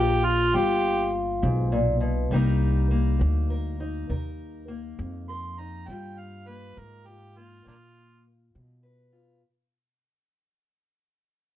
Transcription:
0.00 0.51 A#1 medium
0.00 0.18 G3 medium
0.00 1.45 A#3 medium
0.00 0.54 F4 medium
0.00 0.26 G4 medium
0.00 2.29 B4 medium
0.25 0.57 F4 loud
0.54 1.41 G1 medium
0.54 1.08 G2 medium
0.54 2.29 F4 medium
0.54 1.12 G4 medium
1.42 2.30 B1 loud
1.42 1.72 G#2 medium
1.72 2.00 A#2 medium
2.00 2.31 B2 medium
2.31 3.19 C2 medium
2.31 2.85 C3 medium
2.31 3.19 G3 medium
2.31 2.91 A#3 medium
2.31 3.79 D#4 medium
2.31 3.50 A#4 medium
2.91 4.68 A#3 medium
3.19 4.07 D2 loud
3.19 3.74 G3 medium
3.50 4.10 A#4 medium
3.80 5.58 D#4 medium
4.10 4.96 D#2 medium
4.10 4.63 C3 medium
4.10 5.29 A#4 medium
4.68 6.47 A#3 medium
4.99 5.86 F2 loud
4.99 5.53 G3 medium
5.29 8.79 A#4 medium
5.29 5.61 C6 loud
5.59 5.85 D#4 medium
5.59 5.90 A#5 medium
5.88 6.42 G2 medium
5.88 6.75 G2 medium
5.88 6.76 G3 medium
5.88 7.06 F4 medium
5.88 6.21 G5 loud
6.19 6.49 F5 medium
6.47 7.36 A#3 medium
6.47 6.80 B4 loud
6.77 7.64 G#2 loud
6.77 7.31 G3 medium
6.77 7.08 A#4 medium
7.07 9.11 F4 medium
7.07 7.39 G4 medium
7.37 7.64 A#3 medium
7.37 7.66 F4 loud
7.64 8.19 G2 medium
7.64 8.53 A#2 medium
7.64 8.25 A#3 medium
7.64 7.75 A#3 medium
7.64 7.75 D4 medium
7.64 8.25 F4 medium
8.55 9.42 B2 loud
8.55 9.09 G3 medium
8.83 9.40 B4 medium
9.13 9.40 F4 medium

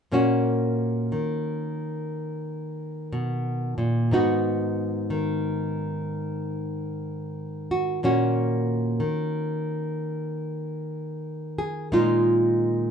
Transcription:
0.12 1.12 A#2 medium
0.12 4.08 A#3 soft
0.12 4.08 C#4 soft
0.12 4.09 F#4 soft
1.12 5.09 D#3 soft
3.12 3.77 B2 soft
3.78 4.11 A#2 medium
4.11 7.99 G#2 medium
4.11 7.99 B3 soft
4.11 8.00 D#4 soft
4.11 7.70 F#4 medium
5.10 8.99 D#3 soft
7.71 7.99 F#4 soft
8.03 9.00 A#2 medium
8.03 11.88 A#3 soft
8.03 11.88 C#4 soft
8.03 11.58 F#4 medium
9.00 12.90 D#3 medium
11.59 11.88 G#4 medium
11.92 12.91 A#2 medium
11.92 12.91 G#3 medium
11.92 12.91 D#4 soft
11.92 12.91 F4 medium

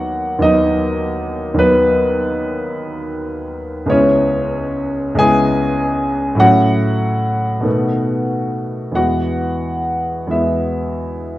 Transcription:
0.00 0.37 D#2 soft
0.00 0.38 F#3 soft
0.00 0.39 B3 soft
0.00 0.39 F#4 medium
0.00 0.43 F#5 medium
0.39 1.53 D#2 medium
0.39 1.54 F#3 soft
0.39 1.54 B3 soft
0.39 1.58 D#5 medium
0.44 1.55 D#4 medium
1.54 3.83 D#2 medium
1.54 3.84 F#3 soft
1.59 3.85 B3 medium
1.59 3.89 B4 medium
3.86 5.13 C#2 medium
3.86 5.14 G#3 soft
3.86 5.15 B3 soft
3.86 5.19 C#5 medium
3.90 5.16 C#4 medium
3.90 5.16 E4 soft
5.15 6.34 C#2 medium
5.15 6.35 G#3 medium
5.15 6.36 B3 medium
5.15 6.36 E4 medium
5.15 6.40 G#5 loud
5.20 6.37 G#4 medium
6.35 7.59 A2 medium
6.35 7.60 F#3 medium
6.35 7.60 A3 soft
6.39 7.61 C#4 soft
6.39 8.92 F#4 medium
6.39 8.94 F#5 loud
7.61 8.90 B2 medium
7.61 8.91 D#3 soft
7.61 8.92 A3 soft
7.65 8.92 B3 soft
8.92 10.25 E2 soft
8.92 10.27 E3 soft
8.92 10.28 G#3 soft
8.92 10.29 B3 soft
8.92 10.33 F#5 medium
8.96 10.29 F#4 medium
10.27 11.38 E2 soft
10.27 11.38 E3 soft
10.27 11.38 G#3 soft
10.31 11.38 B3 soft
10.31 11.38 E4 soft
10.31 11.38 E5 medium

